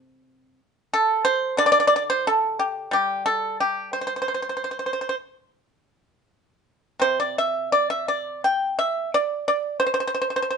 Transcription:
pipa
Already playing: C3
0.93 A4
1.25 C5
1.57 D3 D5
1.66 D5
1.72 D5
1.80 D5
1.87 D5
1.96 D5
2.10 C5
2.27 A4
2.59 G4
2.91 G3 G4
3.26 A4
3.60 G4
3.93 C5
4.01 C5
4.07 C5
4.16 C5
4.22 C5
4.28 C5
4.34 C5
4.42 C5
4.49 C5
4.57 C5
4.64 C5
4.71 C5
4.79 C5
4.86 C5
4.93 C5
5.01 C5
5.09 C5
7.00 C3 C5
7.20 D5
7.38 E5
7.72 D5
7.90 E5
8.08 D5
8.44 G5
8.79 E5
9.14 D5
9.48 D5
9.80 C5
9.86 C5
9.94 C5
10.00 C5
10.07 C5
10.14 C5
10.22 C5
10.30 C5
10.36 C5
10.42 C5
10.50 C5

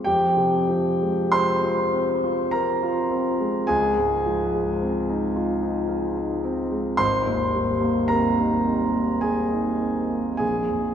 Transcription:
grand piano
0.04 F2 G4 G5
0.37 C3
0.69 F3
1.01 G#3
1.32 C4 C5 C6
1.63 F4
1.93 C4
2.24 F4
2.51 C4 A#4 A#5
2.83 F4
3.11 C4
3.40 G#3
3.67 C#2 G#4 G#5
3.98 G#2
4.26 F3
4.54 G#3
4.81 C4
5.09 D#4
5.36 F4
5.62 D#4
5.88 F4
6.16 D#4
6.44 C4
6.71 G#3
6.97 G#1 C5 C6
7.27 D#2
7.55 G3
7.82 A#3
8.08 C4 A#4 A#5
8.37 D#4
8.65 C4
8.94 A#3
9.21 C4 G#4 G#5
9.51 D#4
9.81 C4
10.10 A#3
10.37 A#1 G#4 G#5
10.70 F2

